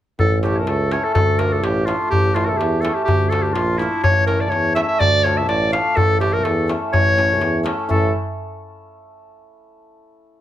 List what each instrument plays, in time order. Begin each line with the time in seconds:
0.19 tuba A1, clarinet A4, darbuka dum
0.33 darbuka tek
0.41 hammered dulcimer A3 C#4 E4, clarinet G4 A4, darbuka tek
0.45 hammered dulcimer A4
0.55 clarinet A#4 C#5
0.67 tuba C#2, clarinet A4, darbuka tek
0.91 hammered dulcimer A3 C#4 E4 A4, clarinet C#5, darbuka tek
1.04 clarinet A4
1.14 tuba D2, clarinet A4, darbuka dum
1.29 darbuka tek
1.38 hammered dulcimer A3 D4 F4 A4, clarinet A#4, darbuka tek
1.53 clarinet A4
1.64 tuba A1, clarinet G4, darbuka tek
1.86 hammered dulcimer A3 D4 F4 A4, clarinet F4, darbuka tek
2.10 tuba A1, clarinet G4, darbuka dum
2.26 darbuka tek
2.34 hammered dulcimer A3 C#4 E4 A4, clarinet F4, darbuka tek
2.46 clarinet A4 A#4
2.57 tuba E2, clarinet G4, darbuka tek
2.81 hammered dulcimer A3 C#4 E4 A4, clarinet A4
2.85 darbuka tek
2.94 clarinet G4
3.04 tuba D2, clarinet G4, darbuka dum
3.29 hammered dulcimer A3 D4 F4 A4, clarinet A4, darbuka tek
3.42 clarinet G4, darbuka tek
3.54 tuba A#1, clarinet F4, darbuka tek
3.69 darbuka tek
3.78 hammered dulcimer A3 D4 F4, clarinet E4, darbuka tek
3.82 hammered dulcimer A4
3.93 darbuka tek
4.04 tuba A1, clarinet C#5, darbuka dum
4.17 darbuka tek
4.27 hammered dulcimer A3 C#4 E4 A4, clarinet A#4, darbuka tek
4.40 clarinet D5
4.45 clarinet D5
4.50 tuba E2, clarinet C#5, darbuka tek
4.75 hammered dulcimer A3 C#4 E4 A4, clarinet E5, darbuka tek
4.83 clarinet E5
4.88 clarinet E5
5.00 tuba D2, clarinet D5, darbuka dum
5.23 hammered dulcimer A3 D4 F4 A4, clarinet C#5, darbuka tek
5.37 clarinet E5
5.48 tuba A1, clarinet D5, darbuka tek
5.72 hammered dulcimer A3 D4 F4 A4, clarinet F5, darbuka tek
5.96 tuba A1, clarinet A4, darbuka dum
6.10 darbuka tek
6.20 hammered dulcimer A3 C#4 E4 A4, clarinet G4, darbuka tek
6.33 clarinet A#4
6.44 tuba E2, clarinet A4, darbuka tek
6.68 hammered dulcimer A3 C#4 E4 A4, darbuka tek
6.93 tuba A1, clarinet C#5, darbuka dum
7.17 hammered dulcimer A3 C#4 E4 A4, darbuka tek
7.41 tuba E2, darbuka tek
7.63 hammered dulcimer A3 C#4 E4 A4, darbuka tek
7.80 darbuka tek
7.89 tuba A1, hammered dulcimer A3 C#4 E4 A4, clarinet A4, darbuka dum